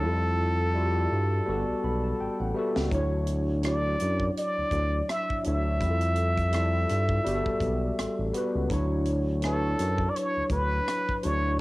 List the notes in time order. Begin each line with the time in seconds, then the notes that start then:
Already playing: A4
0.02 F2 G3 E4 F4
0.06 A4
0.74 G3 E4 F4
0.78 F#4
0.85 G4
1.12 G2
1.45 G1 G3 B3 F#4
1.50 A4
1.68 B1
1.84 B1 B5
2.04 A5
2.20 A1 G5
2.40 A1 F#5
2.54 G3 B3 F#4 E5
2.58 A4
2.76 C#2, snare
2.90 D2 F#3 D4 E4, kick, closed hi-hat
2.94 C#5
3.27 closed hi-hat
3.62 F#3 D4 E4, cross-stick, closed hi-hat
3.67 D5
4.00 F#2, closed hi-hat
4.20 kick
4.37 D5, closed hi-hat
4.58 D2
4.71 D2, kick, closed hi-hat
5.09 E5, cross-stick, closed hi-hat
5.30 kick
5.43 D2 F#3 D4 E4 E5, closed hi-hat
5.48 C#5
5.79 F2 G3 E4 F4, kick, closed hi-hat
5.84 G4
5.90 A4
6.01 closed hi-hat
6.16 closed hi-hat
6.38 kick, closed hi-hat
6.51 G3 E4 F4, cross-stick, closed hi-hat
6.56 A4
6.89 G2, cross-stick, closed hi-hat
7.09 kick
7.24 G1 G3 B3 F#4, closed hi-hat
7.28 G4
7.35 A4
7.46 B1, kick
7.60 B1, kick, closed hi-hat
7.99 A1, cross-stick, closed hi-hat
8.19 A1
8.33 G3 B3 F#4, closed hi-hat
8.37 B4
8.55 C#2
8.69 D2 F#3 D4 E4, kick, closed hi-hat
8.74 C#5
9.06 closed hi-hat
9.41 F#3 D4 E4 A4, cross-stick, closed hi-hat
9.46 B4
9.53 C#5
9.79 F#2, cross-stick, closed hi-hat
9.98 kick
10.10 D5
10.16 C#5, closed hi-hat
10.37 D2
10.50 D2 B4, kick, closed hi-hat
10.88 cross-stick, closed hi-hat
11.09 kick
11.23 D2 F#3 D4 E4 C#5, closed hi-hat
11.27 D5